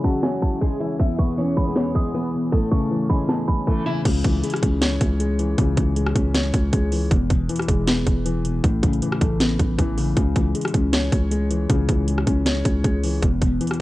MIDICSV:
0, 0, Header, 1, 7, 480
1, 0, Start_track
1, 0, Key_signature, 4, "minor"
1, 0, Tempo, 382166
1, 1251, Time_signature, 4, 2, 24, 8
1, 17349, End_track
2, 0, Start_track
2, 0, Title_t, "Synth bell"
2, 0, Program_c, 0, 98
2, 56, Note_on_c, 0, 81, 82
2, 281, Note_off_c, 0, 81, 0
2, 292, Note_on_c, 0, 80, 88
2, 519, Note_off_c, 0, 80, 0
2, 531, Note_on_c, 0, 81, 78
2, 759, Note_off_c, 0, 81, 0
2, 1491, Note_on_c, 0, 85, 73
2, 1942, Note_off_c, 0, 85, 0
2, 1972, Note_on_c, 0, 83, 77
2, 2423, Note_off_c, 0, 83, 0
2, 2456, Note_on_c, 0, 87, 89
2, 3130, Note_off_c, 0, 87, 0
2, 3409, Note_on_c, 0, 85, 73
2, 3861, Note_off_c, 0, 85, 0
2, 3887, Note_on_c, 0, 83, 75
2, 4117, Note_off_c, 0, 83, 0
2, 4132, Note_on_c, 0, 81, 79
2, 4359, Note_off_c, 0, 81, 0
2, 4368, Note_on_c, 0, 83, 89
2, 5046, Note_off_c, 0, 83, 0
2, 17349, End_track
3, 0, Start_track
3, 0, Title_t, "Steel-string acoustic guitar"
3, 0, Program_c, 1, 25
3, 54, Note_on_c, 1, 66, 68
3, 65, Note_on_c, 1, 54, 58
3, 729, Note_off_c, 1, 66, 0
3, 735, Note_off_c, 1, 54, 0
3, 776, Note_on_c, 1, 68, 91
3, 786, Note_on_c, 1, 56, 64
3, 955, Note_off_c, 1, 68, 0
3, 962, Note_off_c, 1, 56, 0
3, 1007, Note_on_c, 1, 64, 83
3, 1016, Note_on_c, 1, 52, 62
3, 1190, Note_off_c, 1, 64, 0
3, 1195, Note_off_c, 1, 52, 0
3, 1252, Note_on_c, 1, 76, 95
3, 1263, Note_on_c, 1, 64, 70
3, 1433, Note_off_c, 1, 76, 0
3, 1440, Note_off_c, 1, 64, 0
3, 1489, Note_on_c, 1, 71, 70
3, 1500, Note_on_c, 1, 59, 54
3, 1671, Note_off_c, 1, 71, 0
3, 1678, Note_off_c, 1, 59, 0
3, 1730, Note_on_c, 1, 73, 87
3, 1740, Note_on_c, 1, 61, 72
3, 2075, Note_off_c, 1, 73, 0
3, 2081, Note_off_c, 1, 61, 0
3, 2099, Note_on_c, 1, 71, 65
3, 2110, Note_on_c, 1, 59, 55
3, 2184, Note_off_c, 1, 71, 0
3, 2191, Note_off_c, 1, 59, 0
3, 2211, Note_on_c, 1, 73, 84
3, 2221, Note_on_c, 1, 61, 65
3, 2392, Note_off_c, 1, 73, 0
3, 2398, Note_off_c, 1, 61, 0
3, 2452, Note_on_c, 1, 68, 83
3, 2461, Note_on_c, 1, 56, 60
3, 2633, Note_off_c, 1, 68, 0
3, 2639, Note_off_c, 1, 56, 0
3, 2694, Note_on_c, 1, 71, 80
3, 2704, Note_on_c, 1, 59, 68
3, 2874, Note_off_c, 1, 71, 0
3, 2880, Note_off_c, 1, 59, 0
3, 3166, Note_on_c, 1, 69, 106
3, 3177, Note_on_c, 1, 57, 78
3, 3349, Note_off_c, 1, 69, 0
3, 3356, Note_off_c, 1, 57, 0
3, 3410, Note_on_c, 1, 69, 80
3, 3420, Note_on_c, 1, 57, 61
3, 3862, Note_off_c, 1, 69, 0
3, 3867, Note_off_c, 1, 57, 0
3, 3891, Note_on_c, 1, 68, 76
3, 3901, Note_on_c, 1, 56, 60
3, 4568, Note_off_c, 1, 68, 0
3, 4573, Note_off_c, 1, 56, 0
3, 4611, Note_on_c, 1, 69, 78
3, 4622, Note_on_c, 1, 57, 65
3, 4792, Note_off_c, 1, 69, 0
3, 4799, Note_off_c, 1, 57, 0
3, 4848, Note_on_c, 1, 64, 81
3, 4858, Note_on_c, 1, 52, 63
3, 5030, Note_off_c, 1, 64, 0
3, 5037, Note_off_c, 1, 52, 0
3, 17349, End_track
4, 0, Start_track
4, 0, Title_t, "Analog synth pad"
4, 0, Program_c, 2, 89
4, 0, Note_on_c, 2, 49, 82
4, 0, Note_on_c, 2, 61, 74
4, 0, Note_on_c, 2, 64, 75
4, 0, Note_on_c, 2, 68, 91
4, 1212, Note_off_c, 2, 49, 0
4, 1212, Note_off_c, 2, 61, 0
4, 1212, Note_off_c, 2, 64, 0
4, 1212, Note_off_c, 2, 68, 0
4, 1250, Note_on_c, 2, 40, 82
4, 1250, Note_on_c, 2, 52, 76
4, 1250, Note_on_c, 2, 59, 75
4, 1250, Note_on_c, 2, 68, 90
4, 3151, Note_off_c, 2, 40, 0
4, 3151, Note_off_c, 2, 68, 0
4, 3170, Note_on_c, 2, 45, 78
4, 3170, Note_on_c, 2, 61, 91
4, 5052, Note_off_c, 2, 52, 0
4, 5052, Note_off_c, 2, 59, 0
4, 5071, Note_off_c, 2, 45, 0
4, 5071, Note_off_c, 2, 61, 0
4, 17349, End_track
5, 0, Start_track
5, 0, Title_t, "Grand piano"
5, 0, Program_c, 3, 0
5, 0, Control_c, 3, 64, 127
5, 0, Note_on_c, 3, 49, 92
5, 0, Note_on_c, 3, 52, 77
5, 0, Note_on_c, 3, 56, 81
5, 0, Note_on_c, 3, 61, 87
5, 0, Note_on_c, 3, 73, 96
5, 52, Note_off_c, 3, 61, 0
5, 52, Note_on_c, 3, 61, 89
5, 287, Note_off_c, 3, 73, 0
5, 287, Note_on_c, 3, 73, 103
5, 532, Note_off_c, 3, 49, 0
5, 749, Note_off_c, 3, 56, 0
5, 768, Note_on_c, 3, 56, 80
5, 771, Note_off_c, 3, 52, 0
5, 1010, Note_on_c, 3, 52, 75
5, 1249, Note_off_c, 3, 56, 0
5, 1249, Note_off_c, 3, 73, 0
5, 1250, Note_off_c, 3, 52, 0
5, 1250, Note_on_c, 3, 40, 86
5, 1251, Note_off_c, 3, 61, 0
5, 1269, Control_c, 3, 64, 0
5, 1458, Control_c, 3, 64, 127
5, 1486, Note_on_c, 3, 47, 74
5, 1730, Note_on_c, 3, 52, 89
5, 1970, Note_on_c, 3, 56, 89
5, 2206, Note_on_c, 3, 59, 100
5, 2450, Note_off_c, 3, 40, 0
5, 2666, Note_off_c, 3, 52, 0
5, 2685, Note_on_c, 3, 52, 90
5, 2688, Note_off_c, 3, 47, 0
5, 2928, Note_on_c, 3, 47, 83
5, 3168, Note_off_c, 3, 52, 0
5, 3168, Note_off_c, 3, 59, 0
5, 3168, Note_on_c, 3, 45, 86
5, 3169, Note_off_c, 3, 47, 0
5, 3170, Note_off_c, 3, 56, 0
5, 3186, Control_c, 3, 64, 0
5, 3406, Control_c, 3, 64, 127
5, 3409, Note_on_c, 3, 49, 85
5, 3652, Note_on_c, 3, 52, 91
5, 3888, Note_on_c, 3, 61, 90
5, 4127, Note_on_c, 3, 59, 93
5, 4369, Note_off_c, 3, 45, 0
5, 4593, Note_off_c, 3, 52, 0
5, 4610, Note_off_c, 3, 49, 0
5, 4612, Note_on_c, 3, 52, 95
5, 4850, Note_on_c, 3, 49, 83
5, 5071, Note_off_c, 3, 49, 0
5, 5089, Note_off_c, 3, 59, 0
5, 5089, Note_off_c, 3, 61, 0
5, 5090, Note_on_c, 3, 49, 96
5, 5091, Note_off_c, 3, 52, 0
5, 5107, Control_c, 3, 64, 0
5, 5328, Note_on_c, 3, 52, 82
5, 5335, Control_c, 3, 64, 127
5, 5569, Note_on_c, 3, 56, 88
5, 5809, Note_on_c, 3, 61, 86
5, 6049, Note_on_c, 3, 73, 99
5, 6290, Note_off_c, 3, 49, 0
5, 6510, Note_off_c, 3, 56, 0
5, 6528, Note_on_c, 3, 56, 91
5, 6529, Note_off_c, 3, 52, 0
5, 6768, Note_on_c, 3, 52, 79
5, 7010, Note_off_c, 3, 61, 0
5, 7014, Note_on_c, 3, 49, 93
5, 7233, Note_off_c, 3, 52, 0
5, 7250, Note_off_c, 3, 73, 0
5, 7252, Note_on_c, 3, 52, 78
5, 7471, Note_off_c, 3, 56, 0
5, 7490, Note_on_c, 3, 56, 85
5, 7732, Note_on_c, 3, 61, 89
5, 7968, Note_on_c, 3, 73, 102
5, 8212, Note_off_c, 3, 49, 0
5, 8431, Note_off_c, 3, 56, 0
5, 8450, Note_on_c, 3, 56, 84
5, 8451, Note_off_c, 3, 52, 0
5, 8691, Note_on_c, 3, 52, 77
5, 8929, Note_off_c, 3, 73, 0
5, 8930, Note_off_c, 3, 56, 0
5, 8930, Note_on_c, 3, 40, 88
5, 8931, Note_off_c, 3, 52, 0
5, 8932, Note_off_c, 3, 61, 0
5, 8944, Control_c, 3, 64, 0
5, 9159, Control_c, 3, 64, 127
5, 9168, Note_on_c, 3, 47, 78
5, 9410, Note_on_c, 3, 52, 87
5, 9651, Note_on_c, 3, 56, 89
5, 9887, Note_on_c, 3, 59, 103
5, 10130, Note_off_c, 3, 40, 0
5, 10348, Note_off_c, 3, 52, 0
5, 10367, Note_on_c, 3, 52, 90
5, 10369, Note_off_c, 3, 47, 0
5, 10611, Note_on_c, 3, 47, 85
5, 10849, Note_off_c, 3, 52, 0
5, 10849, Note_off_c, 3, 59, 0
5, 10849, Note_on_c, 3, 45, 88
5, 10851, Note_off_c, 3, 47, 0
5, 10851, Note_off_c, 3, 56, 0
5, 10866, Control_c, 3, 64, 0
5, 11078, Control_c, 3, 64, 127
5, 11090, Note_on_c, 3, 49, 82
5, 11331, Note_on_c, 3, 52, 91
5, 11568, Note_on_c, 3, 57, 92
5, 11806, Note_on_c, 3, 59, 96
5, 12050, Note_off_c, 3, 45, 0
5, 12272, Note_off_c, 3, 52, 0
5, 12290, Note_off_c, 3, 49, 0
5, 12291, Note_on_c, 3, 52, 97
5, 12528, Note_on_c, 3, 49, 84
5, 12749, Note_off_c, 3, 49, 0
5, 12768, Note_off_c, 3, 59, 0
5, 12768, Note_on_c, 3, 49, 92
5, 12769, Note_off_c, 3, 57, 0
5, 12771, Note_off_c, 3, 52, 0
5, 12786, Control_c, 3, 64, 0
5, 13007, Note_on_c, 3, 52, 80
5, 13011, Control_c, 3, 64, 127
5, 13248, Note_on_c, 3, 56, 84
5, 13489, Note_on_c, 3, 61, 86
5, 13729, Note_on_c, 3, 73, 99
5, 13969, Note_off_c, 3, 49, 0
5, 14190, Note_off_c, 3, 56, 0
5, 14209, Note_off_c, 3, 52, 0
5, 14209, Note_on_c, 3, 56, 92
5, 14448, Note_on_c, 3, 52, 79
5, 14690, Note_off_c, 3, 61, 0
5, 14693, Note_on_c, 3, 49, 94
5, 14911, Note_off_c, 3, 52, 0
5, 14930, Note_off_c, 3, 73, 0
5, 14930, Note_on_c, 3, 52, 81
5, 15151, Note_off_c, 3, 56, 0
5, 15169, Note_on_c, 3, 56, 83
5, 15412, Note_on_c, 3, 61, 88
5, 15648, Note_on_c, 3, 73, 102
5, 15892, Note_off_c, 3, 49, 0
5, 16112, Note_off_c, 3, 56, 0
5, 16130, Note_off_c, 3, 52, 0
5, 16131, Note_on_c, 3, 56, 89
5, 16373, Note_on_c, 3, 52, 78
5, 16609, Note_off_c, 3, 73, 0
5, 16611, Note_off_c, 3, 56, 0
5, 16612, Note_off_c, 3, 52, 0
5, 16612, Note_off_c, 3, 61, 0
5, 16612, Note_on_c, 3, 40, 88
5, 16626, Control_c, 3, 64, 0
5, 16836, Control_c, 3, 64, 127
5, 16848, Note_on_c, 3, 47, 77
5, 17090, Note_on_c, 3, 52, 88
5, 17349, Note_off_c, 3, 40, 0
5, 17349, Note_off_c, 3, 47, 0
5, 17349, Note_off_c, 3, 52, 0
5, 17349, End_track
6, 0, Start_track
6, 0, Title_t, "808-style bass"
6, 0, Program_c, 4, 38
6, 5091, Note_on_c, 4, 37, 115
6, 5321, Note_off_c, 4, 37, 0
6, 5331, Note_on_c, 4, 37, 100
6, 5561, Note_off_c, 4, 37, 0
6, 5811, Note_on_c, 4, 37, 100
6, 6272, Note_off_c, 4, 37, 0
6, 6291, Note_on_c, 4, 37, 109
6, 6982, Note_off_c, 4, 37, 0
6, 7010, Note_on_c, 4, 37, 111
6, 7241, Note_off_c, 4, 37, 0
6, 7251, Note_on_c, 4, 37, 104
6, 7712, Note_off_c, 4, 37, 0
6, 7731, Note_on_c, 4, 37, 98
6, 8192, Note_off_c, 4, 37, 0
6, 8211, Note_on_c, 4, 37, 104
6, 8441, Note_off_c, 4, 37, 0
6, 8451, Note_on_c, 4, 37, 111
6, 8912, Note_off_c, 4, 37, 0
6, 8931, Note_on_c, 4, 28, 115
6, 9161, Note_off_c, 4, 28, 0
6, 9171, Note_on_c, 4, 28, 102
6, 9401, Note_off_c, 4, 28, 0
6, 9651, Note_on_c, 4, 28, 101
6, 10112, Note_off_c, 4, 28, 0
6, 10131, Note_on_c, 4, 28, 105
6, 10822, Note_off_c, 4, 28, 0
6, 10851, Note_on_c, 4, 33, 114
6, 11081, Note_off_c, 4, 33, 0
6, 11091, Note_on_c, 4, 33, 101
6, 11321, Note_off_c, 4, 33, 0
6, 11571, Note_on_c, 4, 33, 97
6, 12032, Note_off_c, 4, 33, 0
6, 12051, Note_on_c, 4, 33, 109
6, 12281, Note_off_c, 4, 33, 0
6, 12290, Note_on_c, 4, 33, 107
6, 12751, Note_off_c, 4, 33, 0
6, 12770, Note_on_c, 4, 37, 112
6, 13001, Note_off_c, 4, 37, 0
6, 13010, Note_on_c, 4, 37, 102
6, 13241, Note_off_c, 4, 37, 0
6, 13490, Note_on_c, 4, 37, 101
6, 13951, Note_off_c, 4, 37, 0
6, 13970, Note_on_c, 4, 37, 106
6, 14662, Note_off_c, 4, 37, 0
6, 14690, Note_on_c, 4, 37, 113
6, 14921, Note_off_c, 4, 37, 0
6, 14931, Note_on_c, 4, 37, 102
6, 15391, Note_off_c, 4, 37, 0
6, 15411, Note_on_c, 4, 37, 96
6, 15872, Note_off_c, 4, 37, 0
6, 15891, Note_on_c, 4, 37, 106
6, 16121, Note_off_c, 4, 37, 0
6, 16131, Note_on_c, 4, 37, 104
6, 16592, Note_off_c, 4, 37, 0
6, 16611, Note_on_c, 4, 28, 110
6, 16841, Note_off_c, 4, 28, 0
6, 16851, Note_on_c, 4, 28, 100
6, 17081, Note_off_c, 4, 28, 0
6, 17349, End_track
7, 0, Start_track
7, 0, Title_t, "Drums"
7, 51, Note_on_c, 9, 36, 93
7, 51, Note_on_c, 9, 42, 78
7, 177, Note_off_c, 9, 36, 0
7, 177, Note_off_c, 9, 42, 0
7, 290, Note_on_c, 9, 38, 115
7, 290, Note_on_c, 9, 42, 88
7, 415, Note_off_c, 9, 42, 0
7, 416, Note_off_c, 9, 38, 0
7, 530, Note_on_c, 9, 42, 84
7, 531, Note_on_c, 9, 36, 94
7, 656, Note_off_c, 9, 36, 0
7, 656, Note_off_c, 9, 42, 0
7, 770, Note_on_c, 9, 36, 93
7, 771, Note_on_c, 9, 42, 74
7, 896, Note_off_c, 9, 36, 0
7, 896, Note_off_c, 9, 42, 0
7, 1011, Note_on_c, 9, 42, 82
7, 1136, Note_off_c, 9, 42, 0
7, 1249, Note_on_c, 9, 42, 85
7, 1250, Note_on_c, 9, 36, 114
7, 1375, Note_off_c, 9, 36, 0
7, 1375, Note_off_c, 9, 42, 0
7, 1489, Note_on_c, 9, 42, 71
7, 1490, Note_on_c, 9, 36, 99
7, 1614, Note_off_c, 9, 42, 0
7, 1615, Note_off_c, 9, 36, 0
7, 1730, Note_on_c, 9, 42, 75
7, 1810, Note_off_c, 9, 42, 0
7, 1810, Note_on_c, 9, 42, 56
7, 1889, Note_off_c, 9, 42, 0
7, 1889, Note_on_c, 9, 42, 43
7, 1970, Note_off_c, 9, 42, 0
7, 1970, Note_on_c, 9, 36, 92
7, 1970, Note_on_c, 9, 42, 78
7, 2096, Note_off_c, 9, 36, 0
7, 2096, Note_off_c, 9, 42, 0
7, 2208, Note_on_c, 9, 42, 89
7, 2209, Note_on_c, 9, 38, 123
7, 2333, Note_off_c, 9, 42, 0
7, 2334, Note_off_c, 9, 38, 0
7, 2449, Note_on_c, 9, 42, 91
7, 2450, Note_on_c, 9, 36, 93
7, 2575, Note_off_c, 9, 42, 0
7, 2576, Note_off_c, 9, 36, 0
7, 2690, Note_on_c, 9, 42, 75
7, 2815, Note_off_c, 9, 42, 0
7, 2930, Note_on_c, 9, 42, 76
7, 3056, Note_off_c, 9, 42, 0
7, 3169, Note_on_c, 9, 42, 85
7, 3170, Note_on_c, 9, 36, 115
7, 3295, Note_off_c, 9, 36, 0
7, 3295, Note_off_c, 9, 42, 0
7, 3410, Note_on_c, 9, 36, 98
7, 3410, Note_on_c, 9, 42, 74
7, 3536, Note_off_c, 9, 36, 0
7, 3536, Note_off_c, 9, 42, 0
7, 3537, Note_on_c, 9, 42, 40
7, 3650, Note_off_c, 9, 42, 0
7, 3650, Note_on_c, 9, 42, 69
7, 3775, Note_off_c, 9, 42, 0
7, 3891, Note_on_c, 9, 36, 91
7, 3891, Note_on_c, 9, 42, 80
7, 4016, Note_off_c, 9, 36, 0
7, 4017, Note_off_c, 9, 42, 0
7, 4129, Note_on_c, 9, 38, 123
7, 4129, Note_on_c, 9, 42, 88
7, 4254, Note_off_c, 9, 42, 0
7, 4255, Note_off_c, 9, 38, 0
7, 4371, Note_on_c, 9, 36, 93
7, 4371, Note_on_c, 9, 42, 82
7, 4496, Note_off_c, 9, 36, 0
7, 4496, Note_off_c, 9, 42, 0
7, 4611, Note_on_c, 9, 36, 90
7, 4611, Note_on_c, 9, 42, 74
7, 4737, Note_off_c, 9, 36, 0
7, 4737, Note_off_c, 9, 42, 0
7, 4851, Note_on_c, 9, 42, 82
7, 4977, Note_off_c, 9, 42, 0
7, 5090, Note_on_c, 9, 42, 86
7, 5091, Note_on_c, 9, 36, 114
7, 5091, Note_on_c, 9, 49, 95
7, 5216, Note_off_c, 9, 36, 0
7, 5216, Note_off_c, 9, 42, 0
7, 5216, Note_off_c, 9, 49, 0
7, 5330, Note_on_c, 9, 42, 73
7, 5331, Note_on_c, 9, 36, 99
7, 5456, Note_off_c, 9, 42, 0
7, 5457, Note_off_c, 9, 36, 0
7, 5571, Note_on_c, 9, 42, 75
7, 5651, Note_off_c, 9, 42, 0
7, 5651, Note_on_c, 9, 42, 56
7, 5697, Note_on_c, 9, 37, 93
7, 5730, Note_off_c, 9, 42, 0
7, 5730, Note_on_c, 9, 42, 43
7, 5811, Note_on_c, 9, 36, 94
7, 5812, Note_off_c, 9, 42, 0
7, 5812, Note_on_c, 9, 42, 81
7, 5823, Note_off_c, 9, 37, 0
7, 5937, Note_off_c, 9, 36, 0
7, 5937, Note_off_c, 9, 42, 0
7, 6049, Note_on_c, 9, 42, 86
7, 6050, Note_on_c, 9, 38, 123
7, 6175, Note_off_c, 9, 38, 0
7, 6175, Note_off_c, 9, 42, 0
7, 6290, Note_on_c, 9, 42, 88
7, 6291, Note_on_c, 9, 36, 96
7, 6416, Note_off_c, 9, 42, 0
7, 6417, Note_off_c, 9, 36, 0
7, 6531, Note_on_c, 9, 42, 76
7, 6657, Note_off_c, 9, 42, 0
7, 6771, Note_on_c, 9, 42, 75
7, 6896, Note_off_c, 9, 42, 0
7, 7009, Note_on_c, 9, 42, 88
7, 7010, Note_on_c, 9, 36, 116
7, 7135, Note_off_c, 9, 42, 0
7, 7136, Note_off_c, 9, 36, 0
7, 7249, Note_on_c, 9, 42, 74
7, 7251, Note_on_c, 9, 36, 96
7, 7375, Note_off_c, 9, 42, 0
7, 7376, Note_off_c, 9, 36, 0
7, 7490, Note_on_c, 9, 42, 73
7, 7615, Note_off_c, 9, 42, 0
7, 7618, Note_on_c, 9, 37, 95
7, 7731, Note_on_c, 9, 36, 95
7, 7731, Note_on_c, 9, 42, 81
7, 7743, Note_off_c, 9, 37, 0
7, 7857, Note_off_c, 9, 36, 0
7, 7857, Note_off_c, 9, 42, 0
7, 7969, Note_on_c, 9, 42, 90
7, 7970, Note_on_c, 9, 38, 121
7, 8095, Note_off_c, 9, 42, 0
7, 8096, Note_off_c, 9, 38, 0
7, 8210, Note_on_c, 9, 42, 87
7, 8211, Note_on_c, 9, 36, 94
7, 8336, Note_off_c, 9, 42, 0
7, 8337, Note_off_c, 9, 36, 0
7, 8450, Note_on_c, 9, 42, 76
7, 8451, Note_on_c, 9, 36, 93
7, 8576, Note_off_c, 9, 42, 0
7, 8577, Note_off_c, 9, 36, 0
7, 8691, Note_on_c, 9, 46, 83
7, 8817, Note_off_c, 9, 46, 0
7, 8930, Note_on_c, 9, 42, 85
7, 8931, Note_on_c, 9, 36, 118
7, 9056, Note_off_c, 9, 36, 0
7, 9056, Note_off_c, 9, 42, 0
7, 9170, Note_on_c, 9, 42, 73
7, 9171, Note_on_c, 9, 36, 101
7, 9296, Note_off_c, 9, 42, 0
7, 9297, Note_off_c, 9, 36, 0
7, 9411, Note_on_c, 9, 42, 74
7, 9491, Note_off_c, 9, 42, 0
7, 9491, Note_on_c, 9, 42, 59
7, 9539, Note_on_c, 9, 37, 92
7, 9572, Note_off_c, 9, 42, 0
7, 9572, Note_on_c, 9, 42, 42
7, 9652, Note_off_c, 9, 42, 0
7, 9652, Note_on_c, 9, 36, 93
7, 9652, Note_on_c, 9, 42, 80
7, 9664, Note_off_c, 9, 37, 0
7, 9777, Note_off_c, 9, 36, 0
7, 9778, Note_off_c, 9, 42, 0
7, 9890, Note_on_c, 9, 42, 90
7, 9891, Note_on_c, 9, 38, 117
7, 10016, Note_off_c, 9, 38, 0
7, 10016, Note_off_c, 9, 42, 0
7, 10131, Note_on_c, 9, 36, 97
7, 10131, Note_on_c, 9, 42, 92
7, 10256, Note_off_c, 9, 42, 0
7, 10257, Note_off_c, 9, 36, 0
7, 10371, Note_on_c, 9, 42, 76
7, 10497, Note_off_c, 9, 42, 0
7, 10611, Note_on_c, 9, 42, 76
7, 10737, Note_off_c, 9, 42, 0
7, 10851, Note_on_c, 9, 36, 120
7, 10851, Note_on_c, 9, 42, 87
7, 10976, Note_off_c, 9, 36, 0
7, 10976, Note_off_c, 9, 42, 0
7, 11091, Note_on_c, 9, 36, 100
7, 11091, Note_on_c, 9, 42, 74
7, 11216, Note_off_c, 9, 36, 0
7, 11217, Note_off_c, 9, 42, 0
7, 11219, Note_on_c, 9, 42, 44
7, 11330, Note_off_c, 9, 42, 0
7, 11330, Note_on_c, 9, 42, 72
7, 11456, Note_off_c, 9, 42, 0
7, 11458, Note_on_c, 9, 37, 97
7, 11571, Note_on_c, 9, 36, 94
7, 11572, Note_on_c, 9, 42, 78
7, 11584, Note_off_c, 9, 37, 0
7, 11696, Note_off_c, 9, 36, 0
7, 11697, Note_off_c, 9, 42, 0
7, 11809, Note_on_c, 9, 42, 93
7, 11810, Note_on_c, 9, 38, 120
7, 11935, Note_off_c, 9, 42, 0
7, 11936, Note_off_c, 9, 38, 0
7, 12051, Note_on_c, 9, 36, 94
7, 12051, Note_on_c, 9, 42, 85
7, 12176, Note_off_c, 9, 36, 0
7, 12177, Note_off_c, 9, 42, 0
7, 12290, Note_on_c, 9, 36, 94
7, 12291, Note_on_c, 9, 42, 76
7, 12416, Note_off_c, 9, 36, 0
7, 12417, Note_off_c, 9, 42, 0
7, 12530, Note_on_c, 9, 46, 83
7, 12656, Note_off_c, 9, 46, 0
7, 12770, Note_on_c, 9, 36, 120
7, 12770, Note_on_c, 9, 42, 89
7, 12895, Note_off_c, 9, 36, 0
7, 12895, Note_off_c, 9, 42, 0
7, 13010, Note_on_c, 9, 36, 98
7, 13010, Note_on_c, 9, 42, 71
7, 13135, Note_off_c, 9, 42, 0
7, 13136, Note_off_c, 9, 36, 0
7, 13250, Note_on_c, 9, 42, 75
7, 13330, Note_off_c, 9, 42, 0
7, 13330, Note_on_c, 9, 42, 60
7, 13377, Note_on_c, 9, 37, 97
7, 13410, Note_off_c, 9, 42, 0
7, 13410, Note_on_c, 9, 42, 43
7, 13490, Note_on_c, 9, 36, 98
7, 13491, Note_off_c, 9, 42, 0
7, 13491, Note_on_c, 9, 42, 80
7, 13502, Note_off_c, 9, 37, 0
7, 13616, Note_off_c, 9, 36, 0
7, 13616, Note_off_c, 9, 42, 0
7, 13728, Note_on_c, 9, 42, 91
7, 13729, Note_on_c, 9, 38, 121
7, 13854, Note_off_c, 9, 42, 0
7, 13855, Note_off_c, 9, 38, 0
7, 13970, Note_on_c, 9, 36, 95
7, 13970, Note_on_c, 9, 42, 93
7, 14096, Note_off_c, 9, 36, 0
7, 14096, Note_off_c, 9, 42, 0
7, 14210, Note_on_c, 9, 42, 73
7, 14336, Note_off_c, 9, 42, 0
7, 14451, Note_on_c, 9, 42, 77
7, 14577, Note_off_c, 9, 42, 0
7, 14689, Note_on_c, 9, 42, 87
7, 14690, Note_on_c, 9, 36, 115
7, 14815, Note_off_c, 9, 42, 0
7, 14816, Note_off_c, 9, 36, 0
7, 14930, Note_on_c, 9, 36, 98
7, 14930, Note_on_c, 9, 42, 73
7, 15055, Note_off_c, 9, 42, 0
7, 15056, Note_off_c, 9, 36, 0
7, 15170, Note_on_c, 9, 42, 74
7, 15296, Note_off_c, 9, 42, 0
7, 15297, Note_on_c, 9, 37, 92
7, 15411, Note_on_c, 9, 36, 92
7, 15411, Note_on_c, 9, 42, 79
7, 15423, Note_off_c, 9, 37, 0
7, 15537, Note_off_c, 9, 36, 0
7, 15537, Note_off_c, 9, 42, 0
7, 15649, Note_on_c, 9, 42, 93
7, 15650, Note_on_c, 9, 38, 120
7, 15774, Note_off_c, 9, 42, 0
7, 15775, Note_off_c, 9, 38, 0
7, 15891, Note_on_c, 9, 36, 97
7, 15891, Note_on_c, 9, 42, 84
7, 16016, Note_off_c, 9, 42, 0
7, 16017, Note_off_c, 9, 36, 0
7, 16131, Note_on_c, 9, 36, 95
7, 16131, Note_on_c, 9, 42, 76
7, 16257, Note_off_c, 9, 36, 0
7, 16257, Note_off_c, 9, 42, 0
7, 16371, Note_on_c, 9, 46, 83
7, 16497, Note_off_c, 9, 46, 0
7, 16611, Note_on_c, 9, 36, 116
7, 16611, Note_on_c, 9, 42, 88
7, 16736, Note_off_c, 9, 36, 0
7, 16736, Note_off_c, 9, 42, 0
7, 16850, Note_on_c, 9, 42, 71
7, 16851, Note_on_c, 9, 36, 96
7, 16976, Note_off_c, 9, 42, 0
7, 16977, Note_off_c, 9, 36, 0
7, 17092, Note_on_c, 9, 42, 74
7, 17172, Note_off_c, 9, 42, 0
7, 17172, Note_on_c, 9, 42, 59
7, 17219, Note_on_c, 9, 37, 92
7, 17251, Note_off_c, 9, 42, 0
7, 17251, Note_on_c, 9, 42, 44
7, 17344, Note_off_c, 9, 37, 0
7, 17349, Note_off_c, 9, 42, 0
7, 17349, End_track
0, 0, End_of_file